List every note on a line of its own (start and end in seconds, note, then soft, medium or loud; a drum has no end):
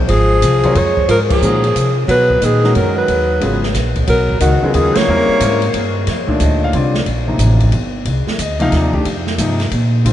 0.08 0.41 G#1 medium
0.08 0.77 F3 medium
0.08 0.79 G#4 medium
0.08 ride medium
0.42 0.74 C2 medium
0.42 hi-hat pedal medium
0.42 ride medium
0.63 0.75 F#3 medium
0.63 0.75 C4 medium
0.63 0.75 F4 medium
0.63 0.75 A#4 medium
0.63 0.76 C#5 medium
0.63 kick soft
0.63 ride soft
0.75 1.07 F2 medium
0.75 1.08 G#3 medium
0.75 1.10 C#5 medium
0.75 ride medium
0.97 kick medium
1.08 1.41 G#2 medium
1.08 1.18 F3 medium
1.08 1.20 A#4 loud
1.08 ride medium
1.30 1.92 F3 medium
1.30 1.94 G#4 medium
1.30 kick medium
1.30 crash medium
1.42 1.74 A#2 medium
1.42 1.62 D#3 medium
1.42 1.62 G#3 medium
1.42 1.62 C#4 medium
1.42 1.62 F#4 medium
1.42 1.62 A#4 medium
1.42 hi-hat pedal medium
1.64 ride soft
1.75 2.07 C3 medium
1.75 hi-hat pedal medium
1.75 ride medium
2.08 2.41 B2 medium
2.08 2.43 F#3 medium
2.08 2.46 B4 loud
2.08 ride medium
2.30 kick soft
2.41 2.74 A#2 medium
2.41 2.74 D#3 medium
2.41 2.76 G#4 medium
2.41 hi-hat pedal medium
2.41 ride medium
2.63 3.06 D#3 medium
2.63 3.06 G#3 medium
2.63 3.07 C#4 medium
2.63 3.07 F#4 medium
2.63 3.07 A#4 medium
2.63 snare soft
2.75 3.08 F#2 medium
2.75 2.95 F#3 medium
2.75 2.96 A#4 medium
2.75 ride medium
2.96 3.63 F#3 medium
2.96 3.64 B4 medium
3.08 3.41 D#2 medium
3.08 ride medium
3.41 3.74 G#1 medium
3.41 3.60 C#3 medium
3.41 3.61 F#3 medium
3.41 3.61 B3 medium
3.41 3.61 F4 medium
3.41 3.61 G#4 medium
3.41 ride medium
3.63 snare soft
3.74 4.07 A#1 medium
3.74 snare soft
3.74 hi-hat pedal medium
3.74 ride medium
3.96 kick medium
3.96 ride soft
4.07 4.39 B1 medium
4.07 4.38 F#3 medium
4.07 4.40 A#4 medium
4.07 ride medium
4.29 kick medium
4.40 4.60 C#2 medium
4.40 4.74 D#3 medium
4.40 4.77 F#4 medium
4.40 hi-hat pedal medium
4.40 ride medium
4.63 5.05 C#3 medium
4.63 5.05 F#3 medium
4.63 5.06 B3 medium
4.63 5.06 F4 medium
4.63 5.06 G#4 medium
4.74 4.94 D#2 medium
4.74 4.96 D#3 medium
4.74 4.99 G#4 medium
4.74 ride medium
4.95 5.95 A#3 medium
4.95 5.96 C#5 loud
4.95 muted upright bass stroke soft
4.95 snare medium
4.95 ride medium
5.08 5.27 E2 medium
5.08 5.39 G3 medium
5.08 5.40 C4 medium
5.08 5.40 C#4 medium
5.08 5.40 E4 medium
5.08 5.41 A#4 medium
5.29 muted upright bass stroke soft
5.40 5.73 G#2 medium
5.40 5.60 G3 medium
5.40 5.60 C4 medium
5.40 5.60 C#4 medium
5.40 5.61 E4 medium
5.40 5.61 A#4 medium
5.40 hi-hat pedal medium
5.40 ride medium
5.62 ride soft
5.73 6.06 G2 medium
5.73 ride medium
6.07 6.27 F2 medium
6.07 snare soft
6.07 ride medium
6.27 6.71 A#2 medium
6.27 6.71 D#3 medium
6.27 6.71 A3 medium
6.27 6.72 D4 medium
6.27 muted upright bass stroke soft
6.27 kick medium
6.40 6.72 D2 medium
6.40 6.62 D#5 medium
6.40 hi-hat pedal medium
6.40 ride medium
6.64 6.75 F5 medium
6.73 7.05 C2 medium
6.73 6.92 D3 medium
6.73 6.93 G3 medium
6.73 6.93 C4 medium
6.73 6.93 F4 medium
6.73 7.06 D5 medium
6.73 ride medium
6.94 snare medium
7.06 7.38 A#1 medium
7.06 ride medium
7.27 7.70 C3 medium
7.27 7.70 F3 medium
7.27 7.71 A#3 medium
7.27 7.71 D#4 medium
7.38 7.71 A1 medium
7.38 hi-hat pedal medium
7.38 ride medium
7.60 kick soft
7.60 ride soft
7.72 8.05 G1 medium
7.72 ride medium
8.05 8.25 C2 medium
8.05 ride medium
8.27 snare medium
8.38 8.71 D2 medium
8.38 8.61 D#5 medium
8.38 hi-hat pedal medium
8.38 ride medium
8.59 8.91 C3 medium
8.59 8.92 F3 medium
8.59 8.92 A#3 medium
8.59 8.92 D#4 medium
8.59 8.73 F5 loud
8.59 ride soft
8.72 9.04 D#2 medium
8.72 9.05 D5 medium
8.72 snare soft
8.72 ride medium
8.92 9.04 D#3 medium
8.92 9.04 A3 medium
8.92 9.04 D4 medium
8.92 9.05 G4 medium
8.92 kick medium
9.05 9.37 F2 medium
9.05 ride medium
9.27 snare medium
9.38 9.71 G2 medium
9.38 9.58 C3 medium
9.38 9.58 F3 medium
9.38 9.58 A#3 medium
9.38 9.59 D#4 medium
9.38 hi-hat pedal medium
9.38 ride medium
9.60 snare soft
9.60 ride soft
9.71 10.04 A#2 medium
9.71 ride medium
10.04 10.13 A#1 medium
10.04 10.13 D3 medium
10.04 10.13 G3 medium
10.04 10.13 C4 medium
10.04 10.13 F4 medium
10.04 ride medium